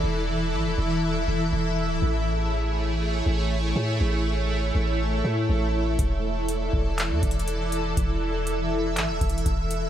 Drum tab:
HH |------------------------|------------------------|------------------------|x-----x-----x--xxxx--x--|
CP |------------------------|------------------------|------------------------|------------x-----------|
BD |------------------------|------------------------|------------------------|o--------o-----o--------|

HH |x-----x-----x--xxxx--x--|
CP |------------x-----------|
BD |o--------------o--o-----|